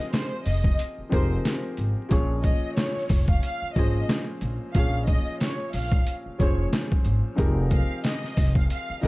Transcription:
Already playing: F3 C4 D#4 G4 G#4 A#4
0.00 closed hi-hat
0.13 C5, snare, closed hi-hat
0.45 F1 D#5, open hi-hat
0.64 kick
0.79 closed hi-hat
0.98 muted upright bass stroke
1.09 F1 F3 C4 D#4 G4 G#4 A#4 C5, kick, closed hi-hat
1.45 snare, closed hi-hat
1.77 G#1, closed hi-hat
2.09 A#1 A#2 F3 C#4 G#4 C#5, kick, closed hi-hat
2.44 D#5, kick, closed hi-hat
2.77 C#5, snare, closed hi-hat
2.96 snare
3.09 F1, kick, open hi-hat
3.28 F5, kick
3.43 F5, closed hi-hat
3.62 muted upright bass stroke
3.75 G#1 A#2 F3 C#4 G#4 D#5, kick, closed hi-hat
3.79 C5
4.09 snare, closed hi-hat
4.41 A#1, closed hi-hat
4.75 A#1 A#2 F3 C#4 G#4 F5, kick, closed hi-hat
4.79 C#5
5.07 D#5, kick, closed hi-hat
5.40 C#5, snare, closed hi-hat
5.73 A#1 F5, open hi-hat
5.92 kick
6.07 closed hi-hat
6.26 muted upright bass stroke
6.39 F1 A#2 F3 C#4 G#4 C5 C#5, kick, closed hi-hat
6.73 snare, closed hi-hat
6.92 kick
7.05 G#1, closed hi-hat
7.35 F1 F3 C4 D#4 G4 G#4 A#4, kick, closed hi-hat
7.71 F5, kick, closed hi-hat
8.04 D#5, snare, closed hi-hat
8.24 snare
8.37 F1, kick, open hi-hat
8.55 F5, kick
8.70 F5, closed hi-hat
8.90 muted upright bass stroke
9.01 G#1 F3 C4 D#4 G4 G#4 D#5, kick, closed hi-hat

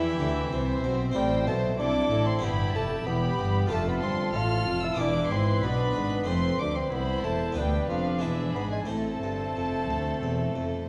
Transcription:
Already playing: E2 E3 C4 E4 G4 E5
0.20 D2 D3
0.52 C2 C3 C4 C5
0.84 B1 B2
1.12 A2 G3 C4 E4 C5 G5
1.16 A1 A2 C5
1.47 B1 B2 A3 A5
1.79 C2 C3 D4 E4 A4 D6
2.11 A1 A2
2.26 C4 C6
2.39 B3 E4 G4
2.43 G1 G2 B3 G4 B5
2.74 F1 F2 A3 A5
3.06 E1 E2 B3 G4 B5
3.39 G1 G2
3.67 F1 F2 A3 D4 F4 A4 A5
3.72 F2 A4
3.88 B3 B5
4.03 G1 G2 C4 C6
4.34 A1 A2 F4 F6
4.67 F1 F2
4.84 E4 E6
4.94 B3 E4 G#4 D6
4.99 E1 E2 D4 E4 B4
5.31 G#1 G#2 C4 C6
5.63 B1 B2 B3 D4 B5
5.96 G#1 G#2
6.24 A3 C4 C5 C6
6.28 F1 F2 C4
6.59 D2 D4 D6
6.76 C4 C6
6.92 C2 B3 E4 C5 B5
7.24 E1 E2 A3 A5
7.52 B3 D4 B4
7.57 D2 G3 D4 B4 G5
7.89 F1 F2 F3 F5
8.19 E3 G#3 D4 G#4 B4 E5
8.23 E1 E2
8.54 G#1 G#2 B3 B5
8.72 G#3 G#5
8.86 A1 A2 A3 C4 A4 C5 A5
8.90 A2
9.21 G1 G2
9.55 F1 F2
9.89 D2
10.22 E1 E2
10.55 F1 F2

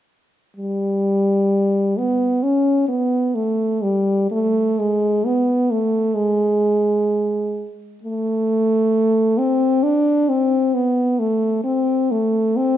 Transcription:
0.57 G3
1.98 B3
2.43 C#4
2.88 B3
3.35 A3
3.83 G3
4.31 A3
4.79 G#3
5.26 B3
5.71 A3
6.15 G#3
8.03 A3
9.38 C4
9.83 D4
10.29 C4
10.75 B3
11.19 A3
11.64 C4
12.11 A3
12.57 C4

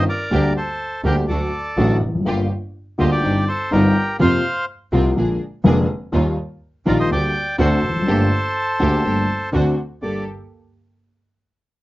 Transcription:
0.09 A#4 D5
0.31 D2 D3 G3 A#3 D4 G4
0.57 A4 C5
1.04 D2 D3 G3 A#3 D4 G4 A#4
1.28 D2 D3 F#3 A3 D4 F#4 A4 D5
1.77 A1 A2 D3 F#3 A3 D4 F#4
2.02 F1
2.09 E2
2.15 F2
2.20 F#2
2.25 G1 G2 D3 G3 A#3 F4 G4
2.98 D2 D3 G3 A#3 F4 G4 C5 D#5
3.12 G4 D5
3.23 G1 G2 D3 G3 C4 D4 D#4
3.48 A4 C5
3.71 G1 G2 D3 G3 C4 D4 D#4 G4 A#4
4.19 F2 C3 F3 A#3 C4 F4 C5 F5
4.92 C2 C3 F3 A#3 C4 F4
5.16 A#1 A#2 D3 G#3 A#3 D4 F4 G#4
5.64 F1 F2 D3 G#3 A#3 D4 F4 G#4
6.12 D#2 D#3 G3 A#3 D#4 F4
6.86 A#1 A#2 D#3 G3 A#3 D#4 F4 A#4 D5
7.00 C5 D#5
7.10 D2 D3 G3 A#3 D4 G4 D5 G5
7.58 D2 D3 A3 C4 D4 F#4 A4 C5
7.83 F1
7.89 E2
7.95 F2
8.02 F#2
8.07 G1 G2 D3 A3 A#3 G4 A4
8.79 D2 D3 A3 A#3 G4 A4
9.04 G1 G2 A3 A#3 G4 A4
9.53 D2 D3 A3 C4 D4 F#4 C5
10.02 G1 G2 A#3 G4 A4 D5

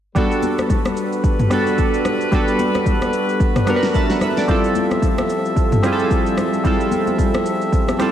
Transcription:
0.15 G3 B3 D4 F#4 A4 B4, kick, low conga, shaker
0.32 shaker
0.43 high conga, shaker
0.58 cross-stick, high conga, shaker
0.70 kick, low conga, shaker
0.85 cross-stick, high conga, shaker
0.97 shaker
1.13 shaker
1.24 kick, shaker
1.39 mid tom, high conga, shaker
1.50 G3 B3 D4 F#4 A4, cross-stick, high conga, shaker
1.67 shaker
1.78 kick, shaker
1.94 shaker
2.05 cross-stick, low conga, shaker
2.21 shaker
2.31 G3 B3 D4 F#4 A4, kick, low conga, shaker
2.48 shaker
2.59 high conga, shaker
2.75 cross-stick, high conga, shaker
2.86 kick, low conga, shaker
3.02 cross-stick, high conga, shaker
3.13 shaker
3.29 shaker
3.40 kick, shaker
3.56 cross-stick, mid tom, high conga, shaker
3.66 G3 B3 D4 F#4 A#4, cross-stick, high conga, shaker
3.76 B4
3.83 snare, shaker
3.94 E5 A5, kick, shaker
4.10 B4 F#5, snare, shaker
4.21 B4 E5, cross-stick, low conga, shaker
4.37 A4 D5, snare, shaker
4.48 F3 G3 C4 E4 F4 G4 A4 E5, kick, low conga, shaker
4.64 shaker
4.75 high conga, shaker
4.91 cross-stick, high conga, shaker
5.02 kick, low conga, shaker
5.18 cross-stick, high conga, shaker
5.30 shaker
5.45 shaker
5.56 kick, shaker
5.72 mid tom, high conga, shaker
5.83 G3 C4 E4 F4 G#4, cross-stick, high conga, shaker
5.93 A4
5.99 shaker
6.11 kick, shaker
6.26 shaker
6.37 cross-stick, low conga, shaker
6.53 shaker
6.64 G3 C4 E4 F4 A4, kick, low conga, shaker
6.80 shaker
6.91 high conga, shaker
7.07 high conga, shaker
7.18 kick, low conga, shaker
7.34 cross-stick, high conga, shaker
7.46 shaker
7.62 shaker
7.72 kick, shaker
7.88 cross-stick, high conga, shaker
7.99 G3 C4 E4 F4 A4, cross-stick, high conga, shaker

